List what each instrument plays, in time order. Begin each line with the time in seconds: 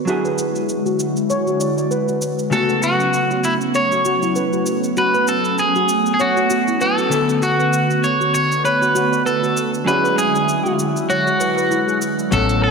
Already playing: analog synth pad C#6
0.05 analog synth pad D3 G#3 E4 F#4, hollow-body jazz guitar F#3 D4 E4, steel pan F#4, shaker
0.10 hollow-body jazz guitar G#4
0.25 steel pan B4, shaker
0.38 shaker
0.56 shaker
0.69 shaker
0.86 steel pan F#4, shaker
1.00 shaker
1.17 shaker
1.30 steel pan C#5, shaker
1.47 steel pan F#4, shaker
1.60 steel pan D5, shaker
1.78 steel pan D5, shaker
1.91 steel pan B4, shaker
2.08 steel pan F#4, shaker
2.22 shaker
2.39 shaker
2.50 hollow-body jazz guitar C#3 A3 B3, analog synth pad F#3 A3 B3 C#4, steel pan F#4, clean electric guitar A4, shaker
2.55 hollow-body jazz guitar F#4
2.69 steel pan B4, shaker
2.83 clean electric guitar F#4, shaker
3.00 shaker
3.14 shaker
3.31 steel pan F#4, shaker
3.44 clean electric guitar E4, shaker
3.61 shaker
3.75 steel pan C#5, clean electric guitar C#5, shaker
3.92 steel pan F#4, shaker
4.05 steel pan F#4, shaker
4.23 steel pan E4, shaker
4.36 steel pan B4, shaker
4.53 steel pan F#4, shaker
4.66 shaker
4.84 shaker
4.97 steel pan F#4, clean electric guitar B4, shaker
5.14 steel pan B4, shaker
5.28 clean electric guitar A4, shaker
5.45 shaker
5.58 clean electric guitar G#4, shaker
5.75 steel pan F#4, shaker
5.89 shaker
6.06 shaker
6.14 clean electric guitar G#4
6.20 clean electric guitar F#4, steel pan C#5, shaker
6.37 steel pan F#4, shaker
6.50 steel pan F#4, shaker
6.68 steel pan E4, shaker
6.81 clean electric guitar A4, steel pan B4, shaker
6.98 steel pan F#4, shaker
7.09 hollow-body jazz guitar D3 B3, analog synth pad D3, shaker
7.14 hollow-body jazz guitar A4
7.29 shaker
7.42 steel pan F#4, clean electric guitar F#4, shaker
7.59 steel pan B4, shaker
7.73 shaker
7.90 shaker
8.04 clean electric guitar C#5, shaker
8.20 steel pan F#4, shaker
8.34 clean electric guitar C#5, shaker
8.52 shaker
8.64 clean electric guitar B4, steel pan C#5, shaker
8.82 steel pan F#4, shaker
8.95 steel pan F#4, shaker
9.13 shaker
9.26 clean electric guitar A4, steel pan B4, shaker
9.43 steel pan F#4, shaker
9.57 shaker
9.74 shaker
9.84 hollow-body jazz guitar F#3 C#4 D4 E4, analog synth pad F#3 G#3 E4, steel pan F#4, clean electric guitar B4, shaker
9.89 hollow-body jazz guitar G#4
10.04 steel pan B4, shaker
10.18 clean electric guitar G#4, shaker
10.35 shaker
10.49 shaker
10.65 steel pan F#4, shaker
10.79 shaker
10.97 shaker
11.10 clean electric guitar F#4, steel pan C#5, shaker
11.27 steel pan F#4, shaker
11.40 steel pan B4, shaker
11.57 steel pan B4, shaker
11.71 steel pan E4, shaker
11.88 steel pan G#4, shaker
12.02 shaker
12.19 shaker
12.31 fretless electric bass A1, hollow-body jazz guitar F#3 B3 C#4 A4, analog synth pad A3 C#5 F#5 B5, clean electric guitar A4, kick, closed hi-hat, shaker
12.49 closed hi-hat, shaker
12.64 clean electric guitar F#4